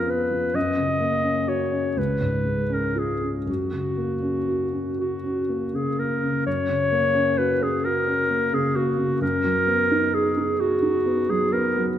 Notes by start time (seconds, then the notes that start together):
Already playing: F2 F3 B3 C#4 G#4 A#4
0.08 B3 B4
0.31 F3
0.54 F#2 D#5
0.77 C#3
1.00 A#3
1.24 C#4
1.47 F#4 C#5
1.72 C#4
1.97 C#2 B4
2.21 G#2
2.45 G#3
2.70 C#4
2.74 A#4
2.95 F4 G#4
3.21 C#4
3.46 F#2 F#4
3.72 C#3
3.97 A#3
4.22 C#4
4.48 F#4
4.73 C#4
4.99 F#4
5.24 C#4
5.49 A#3
5.73 C#3 G#4
5.99 A#3 A#4
6.23 C#3
6.46 F#2 C#5
6.69 C#3
6.92 A#3
7.15 C#4
7.38 F#4 B4
7.62 C#4 G#4
7.85 F#4 A#4
8.08 C#4
8.30 A#3
8.53 C#3 G#4
8.75 A#3 F#4
8.98 C#3
9.21 F#2 A#4
9.44 F#3
9.67 B3
9.92 D#4
10.13 G#4
10.37 D#4
10.60 F#4 G#4
10.82 D#4
11.06 B3
11.29 F#3 G#4
11.53 B3 A#4
11.77 F#3